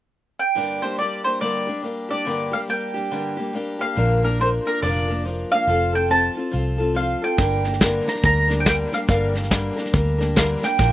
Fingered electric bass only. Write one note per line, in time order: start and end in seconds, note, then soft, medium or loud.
3.97 4.58 A#1 medium
4.83 5.43 F1 medium
5.67 6.28 F1 medium
6.54 7.14 C2 medium
7.39 7.99 G1 medium
8.24 8.84 D2 medium
9.09 9.70 G1 medium
9.94 10.55 D2 medium
10.80 10.92 A#1 medium